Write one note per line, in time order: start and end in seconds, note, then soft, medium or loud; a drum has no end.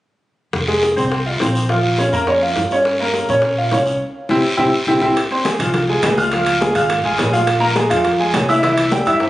0.53 0.94 F1 medium
0.53 high bongo medium
0.53 long guiro medium
0.68 0.92 G#3 medium
0.68 0.92 G#4 medium
0.68 high bongo soft
0.83 high bongo medium
0.83 short guiro medium
0.96 1.38 C2 medium
0.96 1.21 C4 medium
0.96 1.21 C5 medium
0.96 high bongo soft
0.96 short guiro medium
1.12 high bongo medium
1.12 long guiro medium
1.26 1.38 F4 medium
1.26 1.38 F5 medium
1.40 2.08 A#1 medium
1.40 1.65 C4 medium
1.40 1.65 C5 medium
1.40 high bongo medium
1.40 low bongo medium
1.40 short guiro medium
1.55 high bongo soft
1.55 short guiro medium
1.69 1.93 F3 medium
1.69 1.93 F4 medium
1.69 high bongo medium
1.69 long guiro medium
1.98 2.10 C#4 medium
1.98 2.11 C#5 medium
1.98 high bongo medium
1.98 short guiro medium
2.12 2.53 F2 medium
2.12 2.25 A#3 medium
2.12 2.25 A#4 medium
2.12 high bongo soft
2.12 short guiro medium
2.27 2.39 C#4 medium
2.27 2.40 C#5 medium
2.27 high bongo medium
2.27 long guiro medium
2.41 2.66 F4 medium
2.41 2.66 F5 medium
2.41 high bongo soft
2.56 3.23 G2 medium
2.56 high bongo medium
2.56 low bongo medium
2.56 short guiro medium
2.70 2.95 C#4 medium
2.70 2.95 C#5 medium
2.70 high bongo soft
2.70 short guiro medium
2.85 high bongo medium
2.85 long guiro medium
2.99 3.24 A#3 medium
2.99 3.24 A#4 medium
2.99 high bongo soft
3.14 high bongo medium
3.14 short guiro medium
3.28 3.69 A#2 medium
3.28 3.53 C#4 medium
3.28 3.53 C#5 medium
3.28 high bongo soft
3.28 short guiro medium
3.42 high bongo medium
3.42 long guiro medium
3.58 3.70 F4 medium
3.58 3.70 F5 medium
3.71 3.99 C2 medium
3.71 3.96 C#4 medium
3.71 3.96 C#5 medium
3.71 high bongo medium
3.71 low bongo medium
3.71 short guiro medium
3.86 high bongo soft
3.86 short guiro medium
4.29 4.40 C2 medium
4.29 4.39 C4 medium
4.29 4.40 E4 medium
4.29 4.39 G4 medium
4.29 low bongo loud
4.29 long guiro medium
4.57 4.69 C2 medium
4.57 4.67 C4 medium
4.57 4.67 E4 medium
4.57 4.67 G4 medium
4.57 low bongo medium
4.87 4.98 C2 medium
4.87 4.97 C4 medium
4.87 4.97 E4 medium
4.87 4.97 G4 medium
4.87 low bongo medium
4.87 long guiro loud
5.01 5.12 C2 medium
5.01 5.11 C4 medium
5.01 5.11 E4 medium
5.01 5.11 G4 medium
5.01 low bongo medium
5.01 long guiro medium
5.16 high bongo medium
5.16 high conga soft
5.16 high timbale medium
5.16 long guiro medium
5.30 5.43 C4 medium
5.30 5.43 C5 medium
5.30 5.43 C6 medium
5.30 high bongo soft
5.30 high conga soft
5.45 5.57 G#3 medium
5.45 5.57 G#4 medium
5.45 5.57 G#5 medium
5.45 high bongo medium
5.45 high conga loud
5.45 high timbale medium
5.45 low timbale medium
5.45 short guiro medium
5.59 6.00 C2 medium
5.59 5.84 F3 medium
5.59 5.84 F4 medium
5.59 5.84 F5 medium
5.59 high bongo soft
5.59 low conga medium
5.59 high timbale medium
5.59 short guiro medium
5.74 high bongo medium
5.74 high conga soft
5.74 low conga medium
5.74 high timbale medium
5.74 long guiro medium
5.89 6.13 G#3 medium
5.89 6.13 G#4 medium
5.89 6.13 G#5 medium
6.02 6.69 C#2 medium
6.02 high bongo medium
6.02 low bongo medium
6.02 high conga medium
6.02 high timbale medium
6.02 low timbale medium
6.02 short guiro medium
6.17 6.30 F4 medium
6.17 6.29 F5 medium
6.17 6.30 F6 medium
6.17 high bongo soft
6.17 high conga medium
6.17 short guiro medium
6.32 6.56 F3 medium
6.32 6.56 F4 medium
6.32 6.56 F5 medium
6.32 high bongo medium
6.32 high conga soft
6.32 high timbale medium
6.32 long guiro medium
6.46 high conga soft
6.46 high timbale medium
6.61 6.73 G#3 medium
6.61 6.73 G#4 medium
6.61 6.73 G#5 medium
6.61 high bongo medium
6.61 high conga medium
6.61 low timbale medium
6.61 short guiro medium
6.75 7.02 G#1 medium
6.75 6.99 F4 medium
6.75 6.99 F5 medium
6.75 6.99 F6 medium
6.75 high bongo soft
6.75 high conga soft
6.75 high timbale medium
6.75 short guiro medium
6.90 high bongo medium
6.90 high conga soft
6.90 high timbale medium
6.90 long guiro medium
7.04 7.17 G#1 medium
7.04 7.28 G#3 medium
7.04 7.28 G#4 medium
7.04 7.28 G#5 medium
7.04 high bongo soft
7.04 high conga soft
7.18 7.85 A#1 medium
7.18 high bongo medium
7.18 low bongo medium
7.18 high conga soft
7.18 high timbale medium
7.18 low timbale medium
7.18 short guiro medium
7.32 7.56 F3 medium
7.32 7.57 F4 medium
7.32 7.57 F5 medium
7.32 high bongo soft
7.32 high conga medium
7.32 short guiro medium
7.47 high bongo medium
7.47 high conga soft
7.47 high timbale medium
7.47 long guiro medium
7.60 7.72 A#3 medium
7.60 7.73 A#4 medium
7.60 7.73 A#5 medium
7.60 high bongo soft
7.60 high conga soft
7.76 7.88 G#3 medium
7.76 7.88 G#4 medium
7.76 7.88 G#5 medium
7.76 high bongo medium
7.76 high conga medium
7.76 high timbale medium
7.76 low timbale medium
7.76 short guiro medium
7.89 8.31 F2 medium
7.89 8.13 F3 medium
7.89 8.14 F4 medium
7.89 8.14 F5 medium
7.89 high bongo soft
7.89 low conga medium
7.89 high timbale medium
7.89 short guiro medium
8.04 high bongo medium
8.04 high conga soft
8.04 high timbale medium
8.04 long guiro medium
8.19 8.43 G#3 medium
8.19 8.43 G#4 medium
8.19 8.43 G#5 medium
8.19 high conga soft
8.33 9.00 C2 medium
8.33 high bongo medium
8.33 low bongo medium
8.33 high conga medium
8.33 high timbale medium
8.33 low timbale medium
8.33 short guiro medium
8.48 8.60 E4 medium
8.48 8.61 E5 medium
8.48 8.60 E6 medium
8.48 high bongo soft
8.48 high conga medium
8.48 short guiro medium
8.63 8.86 E3 medium
8.63 8.86 E4 medium
8.63 8.87 E5 medium
8.63 high bongo medium
8.63 high timbale medium
8.63 long guiro medium
8.77 high conga soft
8.77 high timbale medium
8.91 9.03 G3 medium
8.91 9.03 G4 medium
8.91 9.04 G5 medium
8.91 high bongo medium
8.91 high conga loud
8.91 low timbale medium
8.91 short guiro medium
9.05 9.30 G2 medium
9.05 9.30 E4 medium
9.05 9.30 E5 medium
9.05 9.30 E6 medium
9.05 high bongo soft
9.05 high conga soft
9.05 high timbale medium
9.05 short guiro medium
9.20 high bongo medium
9.20 high conga soft
9.20 high timbale medium
9.20 long guiro medium